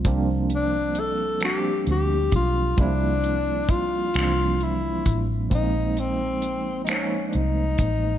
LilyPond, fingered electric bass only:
\new Staff \with { instrumentName = "Fingered electric bass" } { \clef bass \time 6/8 \key c \phrygian \tempo 4. = 44 c,2 d,8 ces,8 | c,4. c,4 a,,8 | bes,,2 c,8 a,,8 | }